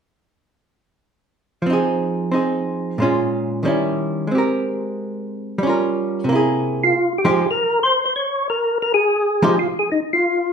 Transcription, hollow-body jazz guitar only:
1.62 2.96 F3 soft
1.66 2.30 C4 soft
1.66 2.32 D#4 medium
1.73 2.33 G#4 medium
2.32 2.98 C4 soft
2.32 2.99 D#4 soft
2.32 2.99 G#4 soft
2.98 3.64 A#2 soft
2.98 3.64 G#3 soft
2.98 3.64 C#4 medium
3.03 3.66 F4 medium
3.63 4.29 D#3 soft
3.63 4.27 G3 soft
3.63 4.31 C#4 soft
3.67 4.32 E4 soft
4.27 5.58 G#3 soft
4.31 5.62 C4 soft
4.31 5.64 G4 soft
4.38 5.66 A#4 medium
5.58 6.26 G3 soft
5.63 6.28 C#4 medium
5.63 6.30 F4 medium
5.69 6.31 A#4 soft
6.24 6.92 C3 soft
6.29 6.94 A#3 medium
6.29 6.96 E4 medium
6.35 6.97 G#4 medium
7.25 7.44 F3 medium
7.25 7.44 G#3 medium
7.25 7.45 D#4 medium
7.25 7.45 G4 medium
9.42 9.54 F3 medium
9.42 9.54 G#3 medium
9.42 9.54 D#4 medium
9.42 9.55 G4 medium

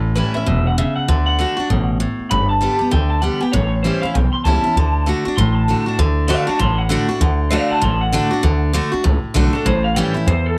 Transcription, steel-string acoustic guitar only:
0.00 0.45 A2 medium
0.15 0.34 E3 medium
0.15 0.34 G3 medium
0.15 0.34 C#4 medium
0.15 0.33 E4 medium
0.34 0.47 C#4 medium
0.34 0.46 E4 medium
0.46 0.76 B2 medium
0.78 1.07 C#3 medium
1.08 1.37 D3 medium
1.39 1.56 D3 medium
1.39 1.57 A3 medium
1.39 1.57 D4 medium
1.39 1.55 F#4 medium
1.57 1.70 D4 soft
1.57 1.69 F#4 medium
1.70 1.99 B2 medium
2.00 2.29 A2 medium
2.31 2.90 G2 medium
2.61 2.79 D3 medium
2.61 2.79 G3 medium
2.61 2.80 B3 medium
2.61 2.78 G4 medium
2.79 2.92 B3 soft
2.79 2.91 G4 medium
2.91 3.21 D3 medium
3.22 3.40 D3 medium
3.22 3.41 G3 medium
3.22 3.41 B3 medium
3.22 3.39 G4 medium
3.41 3.53 B3 soft
3.41 3.53 G4 medium
3.53 4.12 A2 medium
3.84 4.02 E3 medium
3.84 4.02 G3 medium
3.84 4.03 C#4 medium
3.84 4.02 E4 medium
4.03 4.16 C#4 medium
4.03 4.14 E4 medium
4.15 4.74 E2 medium
4.45 4.63 E3 medium
4.45 4.64 G3 medium
4.45 4.64 C#4 medium
4.45 4.62 E4 medium
4.64 4.77 C#4 soft
4.64 4.75 E4 medium
4.77 5.05 D3 medium
5.06 5.24 D3 medium
5.06 5.25 A3 medium
5.06 5.25 D4 medium
5.06 5.24 F#4 medium
5.25 5.38 D4 medium
5.25 5.37 F#4 medium
5.38 5.97 A2 medium
5.68 5.86 D3 medium
5.68 5.86 A3 medium
5.68 5.87 D4 medium
5.68 5.85 F#4 medium
5.86 5.99 D4 soft
5.86 5.98 F#4 medium
5.99 6.27 D3 loud
6.28 6.47 D3 medium
6.28 6.47 A3 medium
6.28 6.47 D4 loud
6.28 6.46 F#4 loud
6.47 6.60 D4 medium
6.47 6.59 F#4 medium
6.59 7.18 A2 medium
6.89 7.08 D3 medium
6.89 7.08 A3 medium
6.89 7.09 D4 loud
6.89 7.07 F#4 loud
7.09 7.22 D4 soft
7.09 7.20 F#4 medium
7.21 7.49 D3 medium
7.51 7.81 D3 medium
7.51 7.81 A3 medium
7.51 7.82 D4 loud
7.51 7.82 F#4 loud
7.82 8.41 A2 medium
8.12 8.31 D3 medium
8.12 8.31 A3 medium
8.12 8.31 D4 loud
8.12 8.30 F#4 loud
8.31 8.44 D4 medium
8.31 8.43 F#4 medium
8.43 8.72 D3 loud
8.73 8.92 D3 medium
8.73 8.92 A3 loud
8.73 8.92 D4 medium
8.73 8.91 F#4 loud
8.92 9.05 D4 soft
8.92 9.04 F#4 medium
9.04 9.63 A2 medium
9.34 9.53 D3 medium
9.34 9.53 A3 medium
9.34 9.53 D4 medium
9.34 9.52 F#4 loud
9.53 9.66 D4 soft
9.53 9.65 F#4 medium
9.66 10.25 A2 medium
9.96 10.14 E3 loud
9.96 10.15 G3 loud
9.96 10.15 C#4 loud
9.96 10.13 E4 medium
10.14 10.27 C#4 medium
10.14 10.26 E4 medium
10.28 10.58 E2 medium

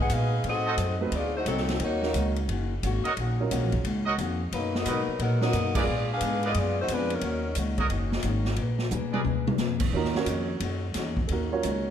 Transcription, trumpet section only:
0.66 0.74 F#4 medium
0.66 0.74 A4 medium
0.66 0.74 C5 medium
0.66 0.74 D#5 medium
3.04 3.12 F#4 medium
3.04 3.12 A#4 medium
3.04 3.12 C#5 medium
3.04 3.12 D#5 loud
4.05 4.13 F#4 medium
4.05 4.14 A#4 medium
4.05 4.13 C#5 medium
4.05 4.14 D#5 medium
4.84 5.00 F#4 medium
4.84 5.00 A#4 medium
4.84 4.99 B4 medium
4.84 5.00 D#5 medium
5.75 5.83 G#4 medium
5.75 5.83 A#4 medium
5.75 5.83 B4 medium
5.75 5.83 D5 medium
6.43 6.51 G#4 medium
6.43 6.51 A#4 medium
6.43 6.51 B4 medium
6.43 6.52 D5 medium
7.78 7.86 F#4 medium
7.78 7.86 A#4 medium
7.78 7.86 C#5 medium
7.78 7.86 D#5 medium
9.12 9.21 G#4 medium
9.12 9.21 A#4 medium
9.12 9.21 B4 medium
9.12 9.21 D5 medium

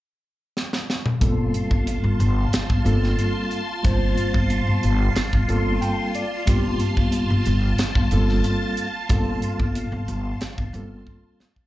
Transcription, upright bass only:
1.21 1.49 G1 medium
1.71 1.98 G1 medium
2.04 2.17 G1 medium
2.20 2.47 G1 medium
2.53 muted upright bass stroke soft
2.69 2.83 G1 medium
2.85 3.13 G1 medium
3.85 4.12 G1 medium
4.34 4.61 G1 medium
4.67 4.80 G1 medium
4.84 5.11 G1 medium
5.17 muted upright bass stroke soft
5.33 5.46 G1 medium
5.48 5.76 G1 medium
6.47 6.75 G1 medium
6.97 7.24 G1 medium
7.30 7.43 G1 medium
7.47 7.73 G1 medium
7.79 muted upright bass stroke soft
7.95 8.09 G1 medium
8.12 8.39 G1 medium
9.10 9.37 G1 medium
9.59 9.86 G1 medium
9.92 10.05 G1 medium
10.08 10.35 G1 medium
10.40 muted upright bass stroke soft
10.58 10.71 G1 medium
10.73 11.00 G1 medium

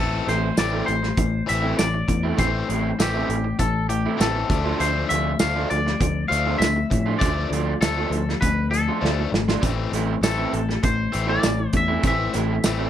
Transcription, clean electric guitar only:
0.00 0.29 A4 medium
0.29 0.56 C5 medium
0.59 0.86 D5 medium
0.86 1.48 C5 medium
1.49 1.78 E5 medium
1.79 2.39 D5 medium
2.39 3.01 C5 medium
3.01 3.59 G4 medium
3.60 3.89 A4 medium
3.89 4.20 G4 medium
4.22 4.83 A4 medium
4.81 5.09 C5 medium
5.09 5.39 E5 medium
5.40 5.70 F5 medium
5.70 6.28 D5 medium
6.28 6.58 F5 medium
6.59 7.18 E5 medium
7.19 7.81 D5 medium
7.81 8.40 A4 medium
8.41 8.71 B4 medium
8.71 9.28 A4 medium
10.24 10.84 A4 medium
10.84 11.26 C5 medium
11.29 11.76 D5 medium
11.77 12.06 E5 medium
12.07 12.90 E5 medium

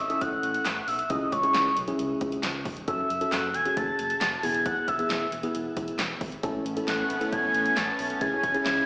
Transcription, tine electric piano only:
0.10 0.64 C#4 medium
0.10 0.64 E4 medium
0.10 0.64 A4 medium
1.10 1.30 C#4 medium
1.10 1.30 E4 medium
1.10 1.30 G#4 medium
1.43 1.70 C#4 medium
1.43 1.70 E4 medium
1.43 1.70 G#4 medium
1.88 2.42 C#4 medium
1.88 2.42 E4 medium
1.88 2.42 G#4 loud
2.88 3.08 C#4 medium
2.88 3.08 F#4 medium
2.88 3.08 A4 medium
3.21 3.48 C#4 medium
3.21 3.48 F#4 medium
3.21 3.48 A4 medium
3.66 4.19 C#4 medium
3.66 4.19 F#4 medium
3.66 4.19 G#4 medium
4.43 4.88 B3 medium
4.43 4.88 E4 medium
4.43 4.88 G#4 medium
4.99 5.26 B3 medium
4.99 5.26 E4 medium
4.99 5.26 G#4 medium
5.43 5.97 B3 medium
5.43 5.97 E4 medium
5.43 5.97 G#4 loud
6.43 6.63 C#4 medium
6.43 6.63 E4 medium
6.43 6.63 A4 loud
6.77 7.04 C#4 medium
6.77 7.04 E4 medium
6.77 7.04 A4 medium
7.21 7.75 C#4 medium
7.21 7.75 E4 medium
7.21 7.75 A4 medium
8.21 8.41 C#4 medium
8.21 8.41 E4 medium
8.21 8.41 G#4 medium
8.54 8.81 C#4 medium
8.54 8.81 E4 medium
8.54 8.81 G#4 medium

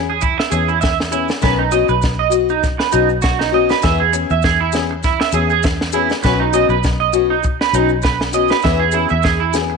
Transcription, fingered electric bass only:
0.00 0.38 E2 medium
0.52 1.30 E2 medium
1.43 1.83 B1 medium
1.89 2.79 B1 medium
2.94 3.72 B1 medium
3.84 4.24 E2 medium
4.30 5.20 E2 medium
5.33 6.11 E2 medium
6.24 6.64 B1 medium
6.69 7.60 B1 medium
7.73 8.52 B1 medium
8.65 9.05 E2 medium
9.11 9.77 E2 medium

